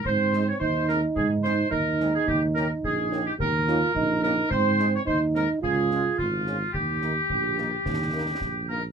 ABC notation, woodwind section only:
X:1
M:2/4
L:1/16
Q:1/4=108
K:Ab
V:1 name="Woodwind section"
c3 d c2 B2 | A2 c2 B3 A | G2 B2 A3 G | B6 B2 |
c3 d c2 B2 | A4 F4 | G8- | G6 B2 |]